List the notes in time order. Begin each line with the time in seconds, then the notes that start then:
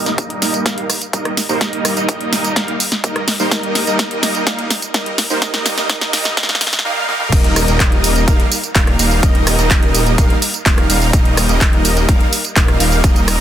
0.06 G3 A#3 D#4 A#4 D#5, snare, closed hi-hat, tambourine
0.18 kick, closed hi-hat, tambourine
0.30 closed hi-hat
0.42 snare, open hi-hat, tambourine
0.54 closed hi-hat, tambourine
0.66 G3 A#3 D#4 A#4 F5, kick, snare, closed hi-hat, tambourine
0.78 closed hi-hat
0.90 cross-stick, open hi-hat, tambourine
1.02 closed hi-hat, tambourine
1.13 G3 A#3 D#4 A#4 D#5, kick, closed hi-hat, tambourine
1.25 cross-stick, closed hi-hat
1.37 snare, open hi-hat, tambourine
1.49 G3 A#3 D#4 A#4 C5, tambourine
1.61 G3 A#3 D#4 A#4 D#5, kick, snare, closed hi-hat, tambourine
1.73 closed hi-hat
1.85 cross-stick, open hi-hat, tambourine
1.97 G3 A#3 D#4 A#4 D#5, closed hi-hat, tambourine
2.09 kick, closed hi-hat, tambourine
2.21 closed hi-hat
2.33 snare, open hi-hat, tambourine
2.44 closed hi-hat, tambourine
2.56 G3 A#3 D#4 A#4 F5, kick, snare, closed hi-hat, tambourine
2.68 closed hi-hat
2.80 open hi-hat, tambourine
2.92 snare, closed hi-hat, tambourine
3.04 G3 A#3 D#4 A#4 D#5, kick, closed hi-hat, tambourine
3.16 cross-stick, closed hi-hat
3.28 snare, open hi-hat, tambourine
3.39 G3 A#3 D#4 A#4 C5, tambourine
3.51 G3 A#3 D#4 A#4 D#5, kick, snare, closed hi-hat, tambourine
3.63 closed hi-hat
3.75 snare, open hi-hat, tambourine
3.87 G3 A#3 D#4 A#4 D#5, closed hi-hat, tambourine
3.99 kick, snare, closed hi-hat, tambourine
4.11 closed hi-hat
4.23 snare, open hi-hat, tambourine
4.35 closed hi-hat, tambourine
4.47 G3 A#3 D#4 A#4 F5, kick, snare, closed hi-hat, tambourine
4.59 closed hi-hat
4.70 snare, open hi-hat, tambourine
4.82 closed hi-hat, tambourine
4.94 G3 A#3 D#4 A#4 D#5, kick, snare, closed hi-hat, tambourine
5.06 closed hi-hat
5.18 snare, open hi-hat, tambourine
5.30 G3 A#3 D#4 A#4 C5, tambourine
5.42 G3 A#3 D#4 A#4 D#5, kick, snare, closed hi-hat, tambourine
5.54 snare, closed hi-hat, tambourine
5.66 snare, open hi-hat, tambourine
5.78 G3 A#3 D#4 A#4 D#5, snare, closed hi-hat, tambourine
5.90 kick, snare, closed hi-hat, tambourine
6.01 snare, closed hi-hat, tambourine
6.13 snare, open hi-hat, tambourine
6.25 snare, tambourine
6.37 G3 A#3 D#4 A#4 F5, kick, snare, closed hi-hat, tambourine
6.43 snare
6.49 snare, closed hi-hat
6.55 snare
6.61 snare, open hi-hat, tambourine
6.67 snare
6.73 snare, closed hi-hat, tambourine
6.79 snare
6.85 G3 A#3 D#4 A#4 F5
7.09 G3 A#3 D#4 A#4 F5, high tom
7.21 mid tom
7.32 D#1 G3 A#3 D#4 A#4 D#5, kick, closed hi-hat, crash, tambourine
7.44 closed hi-hat
7.56 cross-stick, open hi-hat, tambourine
7.68 D#1 G3 A#3 D#4 A#4 D#5, closed hi-hat, tambourine
7.80 kick, clap, closed hi-hat, tambourine
7.92 closed hi-hat
8.04 open hi-hat, tambourine
8.16 closed hi-hat, tambourine
8.28 D#1 G3 A#3 D#4 A#4 F5, kick, closed hi-hat, tambourine
8.40 closed hi-hat
8.52 open hi-hat, tambourine
8.64 closed hi-hat, tambourine
8.75 D#1 G3 A#3 D#4 A#4 F5, kick, clap, closed hi-hat, tambourine
8.87 cross-stick, closed hi-hat
8.99 D#1 G3 A#3 D#4 A#4 F5, open hi-hat, tambourine
9.11 tambourine
9.23 D#1 G3 A#3 D#4 A#4 D#5, kick, closed hi-hat, tambourine
9.35 closed hi-hat
9.47 cross-stick, open hi-hat, tambourine
9.59 D#1 G3 A#3 D#4 A#4 D#5, closed hi-hat, tambourine
9.71 kick, clap, closed hi-hat, tambourine
9.83 closed hi-hat
9.95 open hi-hat, tambourine
10.06 closed hi-hat, tambourine
10.18 D#1 G3 A#3 D#4 A#4 F5, kick, closed hi-hat, tambourine
10.30 closed hi-hat
10.42 open hi-hat, tambourine
10.54 closed hi-hat, tambourine
10.66 D#1 G3 A#3 D#4 A#4 F5, kick, clap, closed hi-hat, tambourine
10.78 cross-stick, closed hi-hat
10.90 D#1 G3 A#3 D#4 A#4 F5, open hi-hat, tambourine
11.02 tambourine
11.13 D#1 G3 A#3 D#4 A#4 D#5, kick, closed hi-hat, tambourine
11.25 closed hi-hat
11.37 cross-stick, open hi-hat, tambourine
11.49 D#1 G3 A#3 D#4 A#4 D#5, closed hi-hat, tambourine
11.61 kick, clap, closed hi-hat, tambourine
11.73 closed hi-hat
11.85 open hi-hat, tambourine
11.97 closed hi-hat, tambourine
12.09 D#1 G3 A#3 D#4 A#4 F5, kick, closed hi-hat, tambourine
12.21 closed hi-hat
12.33 open hi-hat, tambourine
12.45 closed hi-hat, tambourine
12.56 D#1 G3 A#3 D#4 A#4 F5, kick, clap, closed hi-hat, tambourine
12.68 cross-stick, closed hi-hat
12.80 D#1 G3 A#3 D#4 A#4 F5, open hi-hat, tambourine
12.92 tambourine
13.04 D#1 G3 A#3 D#4 A#4 D#5, kick, closed hi-hat, tambourine
13.16 closed hi-hat, tambourine
13.28 cross-stick, open hi-hat, tambourine